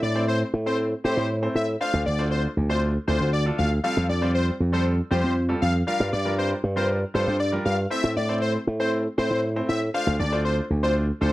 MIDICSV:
0, 0, Header, 1, 4, 480
1, 0, Start_track
1, 0, Key_signature, -1, "minor"
1, 0, Tempo, 508475
1, 1705, Time_signature, 4, 2, 24, 8
1, 10691, End_track
2, 0, Start_track
2, 0, Title_t, "Analog synth lead"
2, 0, Program_c, 0, 81
2, 26, Note_on_c, 0, 74, 81
2, 231, Note_off_c, 0, 74, 0
2, 266, Note_on_c, 0, 72, 85
2, 369, Note_off_c, 0, 72, 0
2, 626, Note_on_c, 0, 72, 74
2, 728, Note_off_c, 0, 72, 0
2, 988, Note_on_c, 0, 72, 79
2, 1192, Note_off_c, 0, 72, 0
2, 1467, Note_on_c, 0, 76, 89
2, 1569, Note_off_c, 0, 76, 0
2, 1705, Note_on_c, 0, 77, 107
2, 1911, Note_off_c, 0, 77, 0
2, 1945, Note_on_c, 0, 74, 85
2, 2150, Note_off_c, 0, 74, 0
2, 2182, Note_on_c, 0, 72, 76
2, 2286, Note_off_c, 0, 72, 0
2, 2542, Note_on_c, 0, 72, 82
2, 2646, Note_off_c, 0, 72, 0
2, 2902, Note_on_c, 0, 72, 82
2, 3109, Note_off_c, 0, 72, 0
2, 3143, Note_on_c, 0, 74, 86
2, 3247, Note_off_c, 0, 74, 0
2, 3381, Note_on_c, 0, 77, 78
2, 3486, Note_off_c, 0, 77, 0
2, 3622, Note_on_c, 0, 77, 123
2, 3829, Note_off_c, 0, 77, 0
2, 3863, Note_on_c, 0, 74, 85
2, 4070, Note_off_c, 0, 74, 0
2, 4103, Note_on_c, 0, 72, 88
2, 4207, Note_off_c, 0, 72, 0
2, 4465, Note_on_c, 0, 72, 73
2, 4568, Note_off_c, 0, 72, 0
2, 4824, Note_on_c, 0, 72, 77
2, 5030, Note_off_c, 0, 72, 0
2, 5302, Note_on_c, 0, 77, 94
2, 5406, Note_off_c, 0, 77, 0
2, 5544, Note_on_c, 0, 77, 106
2, 5750, Note_off_c, 0, 77, 0
2, 5785, Note_on_c, 0, 74, 83
2, 5990, Note_off_c, 0, 74, 0
2, 6026, Note_on_c, 0, 72, 79
2, 6128, Note_off_c, 0, 72, 0
2, 6385, Note_on_c, 0, 72, 81
2, 6488, Note_off_c, 0, 72, 0
2, 6745, Note_on_c, 0, 72, 77
2, 6951, Note_off_c, 0, 72, 0
2, 6984, Note_on_c, 0, 74, 89
2, 7087, Note_off_c, 0, 74, 0
2, 7223, Note_on_c, 0, 77, 78
2, 7327, Note_off_c, 0, 77, 0
2, 7466, Note_on_c, 0, 76, 114
2, 7671, Note_off_c, 0, 76, 0
2, 7709, Note_on_c, 0, 74, 84
2, 7913, Note_off_c, 0, 74, 0
2, 7945, Note_on_c, 0, 72, 82
2, 8048, Note_off_c, 0, 72, 0
2, 8303, Note_on_c, 0, 72, 68
2, 8407, Note_off_c, 0, 72, 0
2, 8664, Note_on_c, 0, 72, 77
2, 8870, Note_off_c, 0, 72, 0
2, 9144, Note_on_c, 0, 76, 89
2, 9247, Note_off_c, 0, 76, 0
2, 9385, Note_on_c, 0, 77, 107
2, 9591, Note_off_c, 0, 77, 0
2, 9624, Note_on_c, 0, 74, 80
2, 9830, Note_off_c, 0, 74, 0
2, 9863, Note_on_c, 0, 72, 76
2, 9967, Note_off_c, 0, 72, 0
2, 10222, Note_on_c, 0, 72, 84
2, 10326, Note_off_c, 0, 72, 0
2, 10584, Note_on_c, 0, 72, 81
2, 10691, Note_off_c, 0, 72, 0
2, 10691, End_track
3, 0, Start_track
3, 0, Title_t, "Grand piano"
3, 0, Program_c, 1, 0
3, 143, Note_on_c, 1, 57, 71
3, 144, Note_on_c, 1, 60, 63
3, 146, Note_on_c, 1, 64, 66
3, 147, Note_on_c, 1, 72, 75
3, 409, Note_off_c, 1, 57, 0
3, 409, Note_off_c, 1, 60, 0
3, 410, Note_off_c, 1, 64, 0
3, 411, Note_off_c, 1, 72, 0
3, 623, Note_on_c, 1, 57, 72
3, 624, Note_on_c, 1, 60, 66
3, 625, Note_on_c, 1, 64, 66
3, 627, Note_on_c, 1, 72, 75
3, 822, Note_off_c, 1, 57, 0
3, 823, Note_off_c, 1, 60, 0
3, 824, Note_off_c, 1, 64, 0
3, 825, Note_off_c, 1, 72, 0
3, 982, Note_on_c, 1, 57, 68
3, 984, Note_on_c, 1, 60, 66
3, 986, Note_on_c, 1, 64, 66
3, 987, Note_on_c, 1, 67, 80
3, 1182, Note_off_c, 1, 57, 0
3, 1183, Note_off_c, 1, 60, 0
3, 1184, Note_off_c, 1, 64, 0
3, 1184, Note_off_c, 1, 67, 0
3, 1344, Note_on_c, 1, 57, 68
3, 1345, Note_on_c, 1, 60, 65
3, 1347, Note_on_c, 1, 64, 65
3, 1348, Note_on_c, 1, 72, 81
3, 1543, Note_off_c, 1, 57, 0
3, 1543, Note_off_c, 1, 60, 0
3, 1544, Note_off_c, 1, 64, 0
3, 1545, Note_off_c, 1, 72, 0
3, 1703, Note_on_c, 1, 57, 76
3, 1704, Note_on_c, 1, 62, 70
3, 1705, Note_on_c, 1, 65, 65
3, 1708, Note_on_c, 1, 72, 83
3, 1902, Note_off_c, 1, 57, 0
3, 1903, Note_off_c, 1, 62, 0
3, 1904, Note_off_c, 1, 65, 0
3, 1905, Note_off_c, 1, 72, 0
3, 2062, Note_on_c, 1, 57, 74
3, 2064, Note_on_c, 1, 62, 65
3, 2066, Note_on_c, 1, 65, 64
3, 2067, Note_on_c, 1, 72, 77
3, 2328, Note_off_c, 1, 57, 0
3, 2329, Note_off_c, 1, 62, 0
3, 2330, Note_off_c, 1, 65, 0
3, 2331, Note_off_c, 1, 72, 0
3, 2543, Note_on_c, 1, 57, 75
3, 2545, Note_on_c, 1, 62, 65
3, 2546, Note_on_c, 1, 65, 64
3, 2547, Note_on_c, 1, 72, 83
3, 2742, Note_off_c, 1, 57, 0
3, 2743, Note_off_c, 1, 62, 0
3, 2744, Note_off_c, 1, 65, 0
3, 2744, Note_off_c, 1, 72, 0
3, 2902, Note_on_c, 1, 57, 70
3, 2903, Note_on_c, 1, 62, 67
3, 2904, Note_on_c, 1, 65, 65
3, 2906, Note_on_c, 1, 72, 76
3, 3102, Note_off_c, 1, 57, 0
3, 3102, Note_off_c, 1, 62, 0
3, 3103, Note_off_c, 1, 65, 0
3, 3104, Note_off_c, 1, 72, 0
3, 3262, Note_on_c, 1, 57, 70
3, 3264, Note_on_c, 1, 62, 67
3, 3265, Note_on_c, 1, 65, 66
3, 3267, Note_on_c, 1, 69, 76
3, 3462, Note_off_c, 1, 57, 0
3, 3463, Note_off_c, 1, 62, 0
3, 3464, Note_off_c, 1, 65, 0
3, 3464, Note_off_c, 1, 69, 0
3, 3622, Note_on_c, 1, 55, 75
3, 3623, Note_on_c, 1, 60, 70
3, 3625, Note_on_c, 1, 65, 66
3, 3627, Note_on_c, 1, 69, 83
3, 3822, Note_off_c, 1, 55, 0
3, 3823, Note_off_c, 1, 60, 0
3, 3824, Note_off_c, 1, 65, 0
3, 3824, Note_off_c, 1, 69, 0
3, 3981, Note_on_c, 1, 55, 70
3, 3983, Note_on_c, 1, 60, 64
3, 3984, Note_on_c, 1, 65, 65
3, 3986, Note_on_c, 1, 72, 79
3, 4248, Note_off_c, 1, 55, 0
3, 4248, Note_off_c, 1, 60, 0
3, 4249, Note_off_c, 1, 65, 0
3, 4250, Note_off_c, 1, 72, 0
3, 4461, Note_on_c, 1, 55, 72
3, 4462, Note_on_c, 1, 60, 66
3, 4464, Note_on_c, 1, 65, 65
3, 4465, Note_on_c, 1, 69, 79
3, 4661, Note_off_c, 1, 55, 0
3, 4662, Note_off_c, 1, 60, 0
3, 4663, Note_off_c, 1, 65, 0
3, 4664, Note_off_c, 1, 69, 0
3, 4821, Note_on_c, 1, 55, 73
3, 4823, Note_on_c, 1, 60, 66
3, 4825, Note_on_c, 1, 65, 66
3, 4826, Note_on_c, 1, 67, 82
3, 5021, Note_off_c, 1, 55, 0
3, 5023, Note_off_c, 1, 60, 0
3, 5023, Note_off_c, 1, 65, 0
3, 5024, Note_off_c, 1, 67, 0
3, 5181, Note_on_c, 1, 55, 70
3, 5182, Note_on_c, 1, 60, 66
3, 5184, Note_on_c, 1, 65, 64
3, 5186, Note_on_c, 1, 69, 79
3, 5381, Note_off_c, 1, 55, 0
3, 5382, Note_off_c, 1, 60, 0
3, 5383, Note_off_c, 1, 65, 0
3, 5384, Note_off_c, 1, 69, 0
3, 5542, Note_on_c, 1, 55, 74
3, 5543, Note_on_c, 1, 62, 66
3, 5545, Note_on_c, 1, 65, 68
3, 5546, Note_on_c, 1, 70, 82
3, 5742, Note_off_c, 1, 55, 0
3, 5742, Note_off_c, 1, 62, 0
3, 5743, Note_off_c, 1, 65, 0
3, 5744, Note_off_c, 1, 70, 0
3, 5902, Note_on_c, 1, 55, 70
3, 5903, Note_on_c, 1, 62, 65
3, 5905, Note_on_c, 1, 65, 67
3, 5906, Note_on_c, 1, 70, 80
3, 6168, Note_off_c, 1, 55, 0
3, 6169, Note_off_c, 1, 62, 0
3, 6170, Note_off_c, 1, 65, 0
3, 6170, Note_off_c, 1, 70, 0
3, 6381, Note_on_c, 1, 55, 71
3, 6382, Note_on_c, 1, 62, 67
3, 6384, Note_on_c, 1, 65, 66
3, 6387, Note_on_c, 1, 70, 80
3, 6582, Note_off_c, 1, 55, 0
3, 6582, Note_off_c, 1, 62, 0
3, 6583, Note_off_c, 1, 65, 0
3, 6584, Note_off_c, 1, 70, 0
3, 6741, Note_on_c, 1, 55, 72
3, 6743, Note_on_c, 1, 62, 66
3, 6745, Note_on_c, 1, 65, 66
3, 6745, Note_on_c, 1, 69, 77
3, 6941, Note_off_c, 1, 55, 0
3, 6942, Note_off_c, 1, 62, 0
3, 6943, Note_off_c, 1, 65, 0
3, 6943, Note_off_c, 1, 69, 0
3, 7102, Note_on_c, 1, 55, 74
3, 7104, Note_on_c, 1, 62, 66
3, 7105, Note_on_c, 1, 65, 68
3, 7107, Note_on_c, 1, 70, 78
3, 7302, Note_off_c, 1, 55, 0
3, 7303, Note_off_c, 1, 62, 0
3, 7304, Note_off_c, 1, 65, 0
3, 7304, Note_off_c, 1, 70, 0
3, 7459, Note_on_c, 1, 57, 75
3, 7462, Note_on_c, 1, 60, 64
3, 7462, Note_on_c, 1, 64, 68
3, 7464, Note_on_c, 1, 72, 82
3, 7661, Note_off_c, 1, 57, 0
3, 7662, Note_off_c, 1, 60, 0
3, 7662, Note_off_c, 1, 64, 0
3, 7663, Note_off_c, 1, 72, 0
3, 7822, Note_on_c, 1, 57, 71
3, 7823, Note_on_c, 1, 60, 65
3, 7825, Note_on_c, 1, 64, 63
3, 7827, Note_on_c, 1, 72, 79
3, 8088, Note_off_c, 1, 57, 0
3, 8089, Note_off_c, 1, 60, 0
3, 8090, Note_off_c, 1, 64, 0
3, 8090, Note_off_c, 1, 72, 0
3, 8302, Note_on_c, 1, 57, 72
3, 8305, Note_on_c, 1, 60, 64
3, 8305, Note_on_c, 1, 64, 69
3, 8307, Note_on_c, 1, 72, 80
3, 8502, Note_off_c, 1, 57, 0
3, 8503, Note_off_c, 1, 60, 0
3, 8504, Note_off_c, 1, 64, 0
3, 8504, Note_off_c, 1, 72, 0
3, 8662, Note_on_c, 1, 57, 70
3, 8664, Note_on_c, 1, 60, 66
3, 8665, Note_on_c, 1, 64, 65
3, 8666, Note_on_c, 1, 72, 78
3, 8862, Note_off_c, 1, 57, 0
3, 8863, Note_off_c, 1, 60, 0
3, 8863, Note_off_c, 1, 64, 0
3, 8864, Note_off_c, 1, 72, 0
3, 9023, Note_on_c, 1, 57, 69
3, 9025, Note_on_c, 1, 60, 69
3, 9027, Note_on_c, 1, 64, 66
3, 9028, Note_on_c, 1, 72, 80
3, 9223, Note_off_c, 1, 57, 0
3, 9224, Note_off_c, 1, 60, 0
3, 9225, Note_off_c, 1, 64, 0
3, 9225, Note_off_c, 1, 72, 0
3, 9383, Note_on_c, 1, 57, 75
3, 9383, Note_on_c, 1, 62, 70
3, 9386, Note_on_c, 1, 65, 67
3, 9387, Note_on_c, 1, 72, 86
3, 9582, Note_off_c, 1, 57, 0
3, 9583, Note_off_c, 1, 62, 0
3, 9584, Note_off_c, 1, 65, 0
3, 9585, Note_off_c, 1, 72, 0
3, 9743, Note_on_c, 1, 57, 73
3, 9744, Note_on_c, 1, 62, 65
3, 9745, Note_on_c, 1, 65, 67
3, 9747, Note_on_c, 1, 72, 78
3, 10008, Note_off_c, 1, 57, 0
3, 10009, Note_off_c, 1, 62, 0
3, 10010, Note_off_c, 1, 65, 0
3, 10011, Note_off_c, 1, 72, 0
3, 10222, Note_on_c, 1, 57, 70
3, 10223, Note_on_c, 1, 62, 67
3, 10224, Note_on_c, 1, 65, 66
3, 10227, Note_on_c, 1, 72, 79
3, 10422, Note_off_c, 1, 57, 0
3, 10423, Note_off_c, 1, 62, 0
3, 10423, Note_off_c, 1, 65, 0
3, 10424, Note_off_c, 1, 72, 0
3, 10580, Note_on_c, 1, 57, 72
3, 10581, Note_on_c, 1, 62, 65
3, 10583, Note_on_c, 1, 65, 65
3, 10585, Note_on_c, 1, 69, 80
3, 10691, Note_off_c, 1, 57, 0
3, 10691, Note_off_c, 1, 62, 0
3, 10691, Note_off_c, 1, 65, 0
3, 10691, Note_off_c, 1, 69, 0
3, 10691, End_track
4, 0, Start_track
4, 0, Title_t, "Slap bass"
4, 0, Program_c, 2, 36
4, 24, Note_on_c, 2, 45, 85
4, 399, Note_off_c, 2, 45, 0
4, 504, Note_on_c, 2, 45, 86
4, 880, Note_off_c, 2, 45, 0
4, 986, Note_on_c, 2, 45, 82
4, 1079, Note_off_c, 2, 45, 0
4, 1105, Note_on_c, 2, 45, 82
4, 1387, Note_off_c, 2, 45, 0
4, 1466, Note_on_c, 2, 45, 84
4, 1653, Note_off_c, 2, 45, 0
4, 1826, Note_on_c, 2, 38, 96
4, 1920, Note_off_c, 2, 38, 0
4, 1944, Note_on_c, 2, 38, 81
4, 2320, Note_off_c, 2, 38, 0
4, 2425, Note_on_c, 2, 38, 83
4, 2800, Note_off_c, 2, 38, 0
4, 2905, Note_on_c, 2, 38, 80
4, 2999, Note_off_c, 2, 38, 0
4, 3023, Note_on_c, 2, 38, 81
4, 3305, Note_off_c, 2, 38, 0
4, 3386, Note_on_c, 2, 38, 88
4, 3573, Note_off_c, 2, 38, 0
4, 3746, Note_on_c, 2, 41, 97
4, 3839, Note_off_c, 2, 41, 0
4, 3865, Note_on_c, 2, 41, 88
4, 4240, Note_off_c, 2, 41, 0
4, 4344, Note_on_c, 2, 41, 85
4, 4720, Note_off_c, 2, 41, 0
4, 4826, Note_on_c, 2, 41, 84
4, 4919, Note_off_c, 2, 41, 0
4, 4946, Note_on_c, 2, 41, 82
4, 5227, Note_off_c, 2, 41, 0
4, 5306, Note_on_c, 2, 41, 82
4, 5493, Note_off_c, 2, 41, 0
4, 5665, Note_on_c, 2, 43, 98
4, 5759, Note_off_c, 2, 43, 0
4, 5785, Note_on_c, 2, 43, 82
4, 6160, Note_off_c, 2, 43, 0
4, 6264, Note_on_c, 2, 43, 83
4, 6640, Note_off_c, 2, 43, 0
4, 6746, Note_on_c, 2, 43, 77
4, 6839, Note_off_c, 2, 43, 0
4, 6866, Note_on_c, 2, 43, 77
4, 7147, Note_off_c, 2, 43, 0
4, 7226, Note_on_c, 2, 43, 86
4, 7413, Note_off_c, 2, 43, 0
4, 7586, Note_on_c, 2, 45, 99
4, 7680, Note_off_c, 2, 45, 0
4, 7708, Note_on_c, 2, 45, 83
4, 8082, Note_off_c, 2, 45, 0
4, 8186, Note_on_c, 2, 45, 86
4, 8561, Note_off_c, 2, 45, 0
4, 8665, Note_on_c, 2, 45, 80
4, 8759, Note_off_c, 2, 45, 0
4, 8786, Note_on_c, 2, 45, 81
4, 9067, Note_off_c, 2, 45, 0
4, 9146, Note_on_c, 2, 45, 84
4, 9333, Note_off_c, 2, 45, 0
4, 9504, Note_on_c, 2, 38, 98
4, 9598, Note_off_c, 2, 38, 0
4, 9625, Note_on_c, 2, 38, 85
4, 10000, Note_off_c, 2, 38, 0
4, 10104, Note_on_c, 2, 38, 87
4, 10479, Note_off_c, 2, 38, 0
4, 10585, Note_on_c, 2, 38, 85
4, 10679, Note_off_c, 2, 38, 0
4, 10691, End_track
0, 0, End_of_file